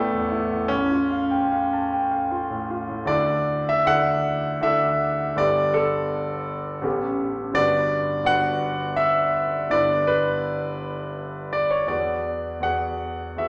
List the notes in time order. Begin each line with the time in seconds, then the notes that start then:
Already playing: A1 A3 B3 E4 D5 E5 G5 B5
0.12 E2
0.31 E4
0.51 E2
0.68 A1 C#4
0.91 F4
1.10 F5
1.30 G5
1.52 F5
1.73 A5
1.93 G5
2.11 F5
2.31 F4
2.50 A2
2.70 F4
2.89 A2
3.05 D2 D4 E4 A4 D5
3.69 E5
3.85 D2 D4 E4 A4 D5 F#5
4.61 D2 D4 E4 A4 D5 E5
5.36 G1 B3 D4 G4 A4 D5
5.74 A4
6.81 A1 B3 C#4 G4 A4
7.53 G1 B3 D4 F#4 B4 D5
8.24 G1 B3 D4 F#4 B4 F#5
8.96 E5
9.70 G1 B3 D4 E4 B4 D5
10.07 B4
11.53 D5
11.71 C#5
11.86 E2 B3 F#4 G#4 B4 D5
12.60 E2 B3 F#4 G#4 B4 F#5
13.36 E2 B3 F#4 G#4 B4 E5